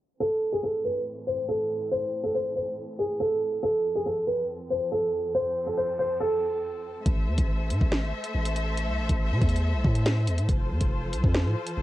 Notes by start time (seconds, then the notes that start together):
0.20 A2 E3 C4 A4
0.52 G#4
0.63 A4
0.85 B4
1.27 C5
1.49 A4
1.92 C5
2.24 A4
2.35 C5
2.56 C5
2.99 G#4
3.20 A4
3.63 F2 F3 C4 A4
3.95 G#4
4.06 A4
4.27 B4
4.70 C5
4.92 A4
5.35 C5
5.66 A4
5.77 C5
5.99 C5
6.20 A4
7.06 A1 A3 A4 C5 E5, kick, closed hi-hat
7.27 E2
7.38 A1, kick, closed hi-hat
7.70 A2, closed hi-hat
7.81 A1, kick
7.92 snare
8.02 G#1
8.24 closed hi-hat
8.35 A1
8.45 closed hi-hat
8.56 closed hi-hat
8.77 closed hi-hat
8.88 C2
8.99 A1
9.09 A1, kick, closed hi-hat
9.31 C3
9.42 E2, kick, closed hi-hat
9.49 closed hi-hat
9.56 closed hi-hat
9.74 B1
9.85 A2, kick
9.95 closed hi-hat
10.06 snare, closed hi-hat
10.27 E2, closed hi-hat
10.38 A2, closed hi-hat
10.49 F1 F3 F4 A4 C5, kick, closed hi-hat
10.70 F2
10.81 F1, kick, closed hi-hat
11.13 C2, closed hi-hat
11.24 F2, kick
11.35 snare
11.45 A2
11.67 closed hi-hat
11.77 F1